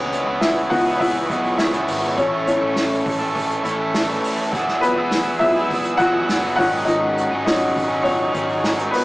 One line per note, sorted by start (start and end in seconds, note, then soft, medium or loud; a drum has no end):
0.00 0.24 C#2 loud
0.00 0.26 G#3 medium
0.00 0.27 B3 medium
0.00 0.38 C#4 medium
0.00 0.26 E4 medium
0.00 0.25 G#4 medium
0.00 2.16 B4 medium
0.00 0.43 C#5 medium
0.00 4.49 C#5 medium
0.00 4.49 C#6 medium
0.00 impact medium
0.12 hi-hat pedal medium
0.12 open hi-hat medium
0.26 0.68 C#2 medium
0.26 0.86 B3 soft
0.26 0.86 E4 medium
0.26 0.84 G#4 medium
0.41 0.69 E4 medium
0.41 0.71 E5 medium
0.41 snare loud
0.41 hi-hat pedal medium
0.41 open hi-hat medium
0.70 1.26 C#2 medium
0.70 1.10 E3 medium
0.70 1.10 B3 medium
0.70 1.10 D#4 medium
0.70 0.99 F#4 medium
0.70 1.01 F#5 loud
0.70 kick medium
0.70 hi-hat pedal medium
0.70 open hi-hat medium
0.85 1.29 B3 soft
0.85 1.30 E4 medium
0.85 1.29 G#4 medium
0.99 1.55 E4 medium
0.99 1.54 E5 loud
0.99 kick medium
0.99 hi-hat pedal medium
0.99 open hi-hat medium
1.30 1.57 B1 loud
1.30 1.74 G#3 medium
1.30 1.73 B3 medium
1.30 1.73 E4 medium
1.30 1.72 G#4 medium
1.30 kick medium
1.30 hi-hat pedal medium
1.30 open hi-hat medium
1.44 open hi-hat medium
1.57 1.87 C#2 medium
1.57 2.14 E4 medium
1.57 2.13 E5 medium
1.57 snare loud
1.57 hi-hat pedal medium
1.57 open hi-hat loud
1.73 2.19 C#3 medium
1.73 2.17 G#3 medium
1.73 2.18 B3 medium
1.73 2.18 E4 medium
1.73 2.18 G#4 medium
1.73 hi-hat pedal medium
1.88 2.16 G#1 medium
1.88 hi-hat pedal medium
1.88 open hi-hat medium
2.17 2.59 A1 loud
2.17 2.62 A3 medium
2.17 2.61 C#4 medium
2.17 2.46 C#4 medium
2.17 2.61 E4 medium
2.17 4.51 A4 medium
2.17 2.60 A4 medium
2.17 2.45 C#5 medium
2.17 kick loud
2.17 hi-hat pedal medium
2.17 open hi-hat loud
2.46 4.49 E3 medium
2.46 4.49 A3 soft
2.46 3.03 C#4 medium
2.46 3.01 C#5 medium
2.46 hi-hat pedal medium
2.46 open hi-hat medium
2.61 3.03 A1 medium
2.61 3.21 A3 soft
2.61 3.20 C#4 medium
2.61 3.20 E4 medium
2.61 3.18 A4 medium
2.76 snare loud
2.76 hi-hat pedal medium
2.76 open hi-hat medium
3.06 3.61 A1 medium
3.06 kick loud
3.06 hi-hat pedal medium
3.06 open hi-hat medium
3.19 3.63 A3 soft
3.19 3.64 C#4 medium
3.19 3.64 E4 medium
3.19 3.64 A4 medium
3.19 open hi-hat soft
3.35 kick medium
3.35 hi-hat pedal medium
3.35 open hi-hat medium
3.50 hi-hat pedal medium
3.64 4.20 A1 loud
3.64 4.08 A3 medium
3.64 4.07 C#4 medium
3.64 4.07 E4 medium
3.64 4.07 A4 medium
3.64 hi-hat pedal medium
3.64 open hi-hat medium
3.94 snare loud
3.94 hi-hat pedal medium
3.94 open hi-hat loud
4.08 4.53 A2 medium
4.08 4.53 E3 medium
4.08 4.52 A3 medium
4.08 4.53 C#4 medium
4.08 4.53 E4 medium
4.08 4.52 A4 medium
4.24 hi-hat pedal medium
4.24 open hi-hat medium
4.52 4.94 E1 loud
4.52 4.97 F#3 medium
4.52 4.97 B3 medium
4.52 4.97 E4 medium
4.52 9.04 G#4 medium
4.52 4.95 G#4 medium
4.52 9.04 F#5 medium
4.52 6.57 E6 medium
4.52 kick loud
4.52 hi-hat pedal medium
4.52 open hi-hat loud
4.68 snare soft
4.81 5.38 B3 medium
4.81 5.36 B4 loud
4.81 hi-hat pedal medium
4.81 open hi-hat medium
4.96 5.38 E1 loud
4.96 5.57 B3 soft
4.96 5.55 E4 medium
4.96 5.55 G#4 medium
5.11 snare loud
5.11 hi-hat pedal medium
5.11 open hi-hat medium
5.39 5.96 E1 medium
5.39 6.25 F#3 medium
5.39 6.25 G#3 medium
5.39 5.96 E4 medium
5.39 5.95 E5 loud
5.39 kick medium
5.39 hi-hat pedal medium
5.39 open hi-hat medium
5.55 5.99 B3 medium
5.55 5.99 E4 medium
5.55 6.00 G#4 medium
5.55 open hi-hat soft
5.70 kick medium
5.70 hi-hat pedal medium
5.70 open hi-hat medium
5.85 hi-hat pedal medium
5.97 6.27 E1 loud
5.97 6.43 F#3 medium
5.97 6.43 B3 medium
5.97 6.42 E4 medium
5.97 6.55 F#4 medium
5.97 6.42 G#4 medium
5.97 6.53 F#5 loud
5.97 kick medium
5.97 hi-hat pedal medium
5.97 open hi-hat medium
6.29 6.57 F#1 medium
6.29 snare loud
6.29 hi-hat pedal medium
6.29 open hi-hat loud
6.43 6.58 E3 medium
6.43 6.57 F#3 medium
6.43 6.58 B3 medium
6.43 6.59 E4 medium
6.43 6.58 G#4 medium
6.56 6.86 G#1 medium
6.56 7.31 G#2 medium
6.56 7.32 D#3 medium
6.56 7.45 F#3 medium
6.56 7.32 F#3 medium
6.56 7.46 C#4 medium
6.56 7.32 C#4 medium
6.56 6.87 D#4 medium
6.56 7.30 D#4 medium
6.56 6.86 F#4 medium
6.56 7.30 G#4 medium
6.56 6.88 F#5 loud
6.56 9.04 C#6 medium
6.56 kick loud
6.56 hi-hat pedal medium
6.56 open hi-hat medium
6.85 7.29 G#1 loud
6.85 7.43 D#4 medium
6.85 7.41 D#5 loud
6.85 hi-hat pedal medium
6.85 open hi-hat loud
7.18 hi-hat pedal medium
7.18 open hi-hat medium
7.31 7.73 G#1 medium
7.31 7.90 F#3 medium
7.31 7.90 C#4 medium
7.31 7.89 D#4 medium
7.31 7.89 G#4 medium
7.44 7.73 F#3 soft
7.44 7.73 C#4 soft
7.44 8.02 D#4 medium
7.44 8.06 D#5 medium
7.44 snare loud
7.44 hi-hat pedal medium
7.44 open hi-hat medium
7.76 8.31 G#1 medium
7.76 kick medium
7.76 hi-hat pedal medium
7.76 open hi-hat medium
7.89 8.32 F#3 soft
7.89 8.33 C#4 soft
7.89 8.34 D#4 medium
7.89 8.34 G#4 medium
8.03 8.88 C#5 medium
8.03 kick medium
8.03 hi-hat pedal medium
8.03 open hi-hat medium
8.07 8.90 C#4 medium
8.33 8.90 G#1 loud
8.33 8.77 F#3 medium
8.33 8.77 C#4 medium
8.33 8.76 D#4 medium
8.33 8.76 G#4 medium
8.33 kick medium
8.33 hi-hat pedal medium
8.33 open hi-hat medium
8.49 open hi-hat medium
8.64 snare loud
8.64 hi-hat pedal medium
8.64 open hi-hat loud
8.77 9.04 G#2 medium
8.77 9.04 D#3 medium
8.77 9.04 F#3 medium
8.77 9.04 C#4 medium
8.77 9.04 D#4 medium
8.77 9.04 G#4 medium
8.77 hi-hat pedal medium
8.91 9.01 B3 medium
8.91 8.98 B4 medium
8.91 hi-hat pedal medium
8.91 open hi-hat medium